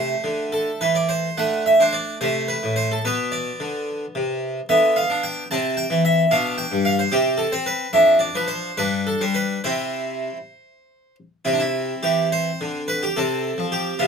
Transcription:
0.00 0.13 C3 soft
0.00 1.34 A3 soft
0.00 0.43 C5 medium
0.24 0.69 D3 soft
0.52 0.81 A4 medium
0.81 1.27 E3 soft
0.81 0.95 B4 medium
0.95 1.10 D5 medium
1.09 1.38 C5 medium
1.37 1.72 D3 soft
1.37 2.17 A3 soft
1.37 1.62 F#5 medium
1.66 1.80 E5 medium
1.80 2.13 D4 soft
1.80 1.94 C5 medium
1.93 2.17 D5 medium
2.21 2.55 C3 medium
2.21 3.00 A3 soft
2.21 2.49 C5 medium
2.48 2.72 B4 medium
2.63 2.96 A2 soft
2.76 2.90 C5 medium
2.91 3.05 A4 medium
3.05 3.49 B2 soft
3.05 4.66 B3 soft
3.05 3.32 B4 medium
3.32 3.87 D5 medium
3.60 4.04 D3 medium
4.15 4.59 C3 medium
4.69 5.02 D3 medium
4.69 5.46 B3 soft
4.69 4.96 E5 medium
4.96 5.23 F5 medium
5.10 5.42 D4 soft
5.23 5.46 G5 medium
5.51 5.83 C3 medium
5.51 6.28 C4 soft
5.51 5.77 A5 medium
5.77 6.00 G5 medium
5.90 6.23 E3 soft
6.05 6.32 E5 medium
6.31 6.64 B2 medium
6.31 7.08 D4 soft
6.31 6.54 F5 loud
6.58 6.85 G5 loud
6.72 7.04 G2 medium
6.85 6.99 F5 medium
6.99 7.12 C5 medium
7.12 7.45 C3 medium
7.12 7.51 C4 soft
7.12 7.39 G4 medium
7.38 7.52 A4 medium
7.52 7.85 C4 soft
7.52 7.66 C5 medium
7.66 7.89 B4 medium
7.93 8.27 F2 medium
7.93 8.74 D4 soft
7.93 8.17 E5 medium
8.19 8.34 D5 medium
8.35 8.69 F3 soft
8.35 8.50 B4 medium
8.48 8.77 C5 medium
8.77 9.12 G2 medium
8.77 9.61 D4 soft
8.77 9.06 B4 medium
9.07 9.21 A4 medium
9.21 9.56 G3 soft
9.21 9.36 C5 medium
9.34 9.60 B4 medium
9.64 10.28 C3 soft
9.64 10.36 C4 soft
9.64 10.36 E4 soft
9.64 11.15 C5 medium
11.45 11.92 C3 medium
11.45 13.12 C4 soft
11.45 11.53 E4 medium
11.53 11.60 D4 medium
11.59 12.03 E4 medium
12.03 12.49 E3 medium
12.03 12.27 G4 medium
12.32 12.80 C5 loud
12.61 13.06 D3 medium
12.88 13.02 B4 medium
13.03 13.17 G4 medium
13.16 13.51 C3 medium
13.16 13.96 C4 soft
13.16 13.64 A4 loud
13.58 13.92 F3 medium
13.72 14.00 G4 loud
13.99 14.07 C3 medium
13.99 14.07 B3 soft
13.99 14.07 F4 loud

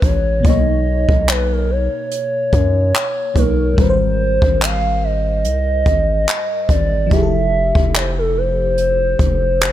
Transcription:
0.00 0.43 A1 loud
0.00 0.38 A2 medium
0.00 0.40 G#3 medium
0.00 0.42 C#4 medium
0.00 0.43 B4 medium
0.00 0.47 C#5 loud
0.00 kick medium
0.00 closed hi-hat medium
0.40 3.30 B2 medium
0.40 3.32 A#3 medium
0.45 1.06 B1 loud
0.45 3.33 D#4 medium
0.45 1.30 D#5 loud
0.45 kick loud
0.45 closed hi-hat medium
0.50 3.35 C#5 medium
1.09 1.89 B1 medium
1.09 kick medium
1.29 1.53 B4 medium
1.29 clap loud
1.52 1.72 A#4 medium
1.71 3.39 C#5 loud
2.11 closed hi-hat medium
2.53 2.93 F#2 loud
2.53 kick medium
2.53 closed hi-hat medium
2.94 clap loud
2.94 closed hi-hat medium
3.34 3.76 B1 loud
3.34 3.77 B2 medium
3.34 3.78 A#3 soft
3.34 3.78 D#4 soft
3.34 3.81 A#4 medium
3.34 kick medium
3.34 closed hi-hat medium
3.39 3.79 C#5 medium
3.73 7.05 G#2 medium
3.73 7.07 G3 medium
3.78 4.40 G#1 loud
3.78 7.08 A#4 medium
3.78 4.64 C5 loud
3.78 kick loud
3.78 closed hi-hat medium
3.83 3.88 B4 medium
3.90 7.13 C5 medium
4.42 5.46 G#1 medium
4.42 kick medium
4.62 5.03 F5 loud
4.62 clap loud
5.04 6.72 D#5 loud
5.44 5.84 C2 medium
5.44 closed hi-hat medium
5.86 6.26 G#1 loud
5.86 kick medium
5.86 closed hi-hat medium
6.28 clap loud
6.28 closed hi-hat medium
6.69 7.09 G#1 loud
6.69 7.11 D5 loud
6.69 kick medium
6.69 closed hi-hat medium
7.07 9.72 F3 medium
7.07 9.72 E4 medium
7.11 7.73 F1 loud
7.11 9.72 G4 medium
7.11 7.91 E5 loud
7.11 kick loud
7.11 closed hi-hat medium
7.16 7.21 G#4 medium
7.23 9.72 A4 medium
7.75 9.16 F1 medium
7.75 kick medium
7.94 8.16 C5 medium
7.94 clap loud
7.94 closed hi-hat medium
8.18 8.39 A4 medium
8.37 9.72 C5 loud
8.78 closed hi-hat medium
9.19 9.72 F1 loud
9.19 kick medium
9.19 closed hi-hat medium
9.61 clap loud
9.61 closed hi-hat medium

